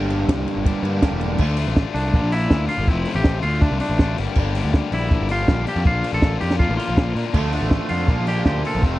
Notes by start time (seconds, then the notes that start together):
Already playing: G1 G2 D3 G3 A#3 D4 G4
0.10 ride
0.29 C2, kick, snare, ride
0.48 ride
0.56 G1
0.64 G2 D3 G3 A#3 D4 G4, kick, ride
0.83 G2 G3 A#3 D4 G4, ride
0.87 G2 D3
1.01 G2 D3 G3 A#3 D4 G4, kick, snare, ride
1.11 E1
1.21 ride
1.38 D2 D3 A3 D4 F4, kick, crash
1.57 D3 A3 D4 F4, open hi-hat
1.67 A1
1.76 D3 A3 D4 F4, kick, snare
1.95 C2 D3 A3 D4 F4, open hi-hat
2.14 A#1 A#2 D3 A#3 D4 F4, kick
2.23 A#1
2.32 A#2 D3 A#3 D4 E4 F4, open hi-hat
2.50 D2 A#2 D3 A#3 D4 F4, kick, snare
2.69 A#2 D3 A#3 D4 F4, open hi-hat
2.78 G1
2.87 F1 F2 C3 F3 A3 C4 E4 F4, kick
3.05 F2 C3 F3 A3 C4, open hi-hat
3.10 F4
3.15 A1 G4
3.24 F2 C3 F3 A3 C4 F4, kick, snare
3.43 D2 D3 A3 D4 F4, open hi-hat
3.62 D3 A3 D4 F4, kick
3.71 C2
3.80 D3 A3 D4 F4, open hi-hat
3.89 A1
3.99 D3 A3 D4 F4, kick, snare
4.18 G1 G2 D3 G3 A#3 D4 G4, snare, open hi-hat
4.35 G1 G2 D3 G3 A#3 D4, kick, crash
4.40 G4
4.55 G2 D3 G3 A#3 D4 G4, open hi-hat
4.64 D2
4.74 G2 D3 G3 A#3 D4 G4, kick, snare
4.92 A#1 G2 D3 G3 A#3 D4 E4 G4, open hi-hat
5.11 G2 D3 G3 A#3 D4 G4, kick
5.21 G1
5.29 G2 D3 G3 A#3 D4 F4 G4, open hi-hat
5.48 A#1 G2 D3 G3 A#3 D4 G4, kick, snare
5.67 G2 D3 G3 A#3 D4 G4, snare, open hi-hat
5.76 F2
5.84 A#1 A#2 D3 A#3 D4 F4, kick
6.04 A#2 D3 A#3 D4 F4, open hi-hat
6.13 A1 A4
6.22 A#2 D3 A#3 D4 F4, kick, snare
6.41 F2 A#2 D3 A#3 D4 F4 G4, open hi-hat
6.51 snare
6.60 A#2 D3 A#3 D4 F4, kick
6.69 A1
6.78 A#2 D3 A#3 D4 F4, open hi-hat
6.89 A#1
6.97 A#2 D3 A#3 D4 F4, kick, snare
7.15 A#2 D3 A#3 D4 F4, open hi-hat
7.34 D2 D3 F3 A3 D4 F4, kick, crash
7.52 D3 F3 A3 D4 F4, open hi-hat
7.61 A1
7.70 D3 F3 A3 D4, kick, snare
7.74 F4
7.89 F2 D3 F3 A3 D4 F4, open hi-hat
8.08 A#1 A#2 D3 F3 A#3 D4 F4, kick
8.19 A#1
8.26 A#2 D3 F3 A#3 D4 F4 G4, open hi-hat
8.45 D2 A#2 D3 F3 A#3 D4 F4 G4, kick, snare
8.63 A#2 D3 F3 A#3 D4 F4 A4, snare, open hi-hat
8.75 A#1
8.82 F1 F2 C3 F3 A3 C4 F4, kick